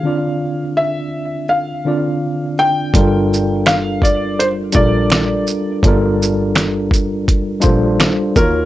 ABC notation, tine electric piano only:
X:1
M:4/4
L:1/8
Q:"Swing 16ths" 1/4=83
K:Gm
V:1 name="Tine electric piano"
[D,CDFd]3 z2 [D,CDFd]2 z | [G,DFAB]3 z2 [G,DFAB]2 z | [G,DFAB]3 z2 [G,DFAc]2 [E,EF_G_d] |]